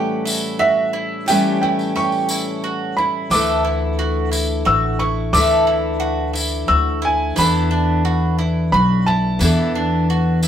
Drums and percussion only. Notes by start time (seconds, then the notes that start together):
0.27 tambourine
1.28 tambourine
1.79 tambourine
1.96 tambourine
2.12 tambourine
2.29 tambourine
3.31 tambourine
4.33 tambourine
5.34 tambourine
6.35 tambourine
7.37 tambourine
9.40 tambourine
10.43 tambourine